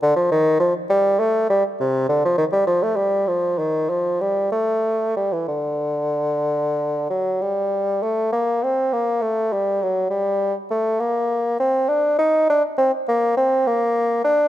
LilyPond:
\new Staff \with { instrumentName = "Bassoon" } { \clef bass \time 6/8 \key g \minor \tempo 4. = 67 d16 f16 ees8 f8 g8 a8 g8 | c8 d16 f16 ees16 g16 f16 a16 g8 f8 | ees8 f8 g8 a4 g16 e16 | d2~ d8 fis8 |
g4 a8 bes8 c'8 bes8 | a8 g8 fis8 g4 a8 | bes4 c'8 d'8 ees'8 d'8 | c'8 bes8 c'8 bes4 d'8 | }